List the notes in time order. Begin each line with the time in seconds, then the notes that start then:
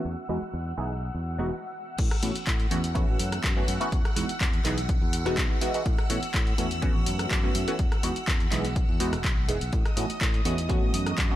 Already playing: F#5 E6
0.05 E2
0.29 E2 E3 G#3 B3 D#4 F#4
0.42 muted fingered electric bass stroke
0.53 E2
0.77 B1 E3 G#3 B3 D#4 G#4
1.14 E2
1.38 E1 E3 G#3 B3 D#4 F#4
1.98 A2 F#5 E6, kick, closed hi-hat, crash
2.11 cross-stick, closed hi-hat
2.22 A2 E3 A3 B3 C#4 F#4, open hi-hat
2.36 muted fingered electric bass stroke, closed hi-hat
2.47 A2, kick, clap, closed hi-hat
2.60 closed hi-hat
2.71 E2 E3 A3 B3 C#4 F#4, open hi-hat
2.84 closed hi-hat
2.95 E3 A3 B3 C#4 F#4, kick, closed hi-hat
3.08 A1
3.19 F#2, open hi-hat
3.32 cross-stick, closed hi-hat
3.44 F#2, kick, clap, closed hi-hat
3.56 E3 A3 B3 C#4 F#4
3.68 F#2, open hi-hat
3.80 E3 A3 B3 C#4 F#4, closed hi-hat
3.92 E2, kick, closed hi-hat
4.05 cross-stick, closed hi-hat
4.16 E2 E3 G#3 B3 D#4 F#4, open hi-hat
4.29 muted fingered electric bass stroke, closed hi-hat
4.41 E2, kick, clap, closed hi-hat
4.53 closed hi-hat
4.64 B1 E3 G#3 B3 D#4 G#4, clap, open hi-hat
4.78 closed hi-hat
4.89 kick, closed hi-hat
5.02 E2
5.13 open hi-hat
5.25 E1 E3 G#3 B3 D#4 F#4, cross-stick, closed hi-hat
5.37 B1, kick, clap, closed hi-hat
5.61 E3 G#3 B3 D#4 F#4, open hi-hat
5.74 E3 G#3 B3 D#4 F#4, closed hi-hat
5.86 A2, kick, closed hi-hat
5.98 cross-stick, closed hi-hat
6.10 A2 E3 A3 B3 C#4 F#4, open hi-hat
6.23 muted fingered electric bass stroke, closed hi-hat
6.34 A2, kick, clap, closed hi-hat
6.47 closed hi-hat
6.58 E2 E3 A3 B3 C#4 F#4, open hi-hat
6.71 closed hi-hat
6.82 E3 A3 B3 C#4 F#4, kick, closed hi-hat
6.95 A1
7.06 F#2, open hi-hat
7.19 cross-stick, closed hi-hat
7.31 F#2, kick, clap, closed hi-hat
7.43 E3 A3 B3 C#4 F#4
7.55 F#2, open hi-hat
7.68 E3 A3 B3 C#4 F#4, closed hi-hat
7.79 E2, kick, closed hi-hat
7.92 cross-stick, closed hi-hat
8.03 E2 E3 G#3 B3 D#4 F#4, open hi-hat
8.16 closed hi-hat
8.28 E2, kick, clap, closed hi-hat
8.40 closed hi-hat
8.51 B1 E3 G#3 B3 D#4 G#4, clap, open hi-hat
8.65 closed hi-hat
8.76 kick, closed hi-hat
8.89 E2
9.00 E3 G#3 B3 D#4 F#4, open hi-hat
9.13 E1, cross-stick, closed hi-hat
9.24 B1, kick, clap, closed hi-hat
9.48 E1 E3 G#3 B3 D#4 G#4, open hi-hat
9.61 B1, closed hi-hat
9.73 A2 D#5 D#6, kick, closed hi-hat
9.86 cross-stick, closed hi-hat
9.97 A2 E3 A3 B3 C#4 F#4, open hi-hat
10.10 muted fingered electric bass stroke, closed hi-hat
10.21 A2, kick, clap, closed hi-hat
10.34 closed hi-hat
10.45 E2 E3 A3 B3 C#4 F#4, open hi-hat
10.58 closed hi-hat
10.69 E3 A3 B3 C#4 F#4, kick, closed hi-hat
10.82 A1
10.94 F#2, open hi-hat
11.07 cross-stick, closed hi-hat
11.18 F#2, kick, clap, closed hi-hat
11.30 E3 A3 B3 C#4 F#4